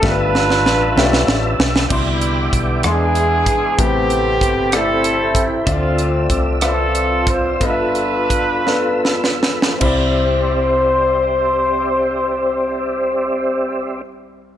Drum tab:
CC |------------|x-----------|------------|------------|
HH |------------|--x-x-x-x-x-|x-x-x-x-x-x-|x-x-x-x-x-x-|
SD |o-ooo-ooo-oo|------r-----|------r-----|------r-----|
BD |o-----------|o---o-----o-|o---o-----o-|o---o-----o-|

CC |------------|x-----------|------------|
HH |x-x-x-------|------------|------------|
SD |------o-oooo|------------|------------|
BD |o---o-------|o-----------|------------|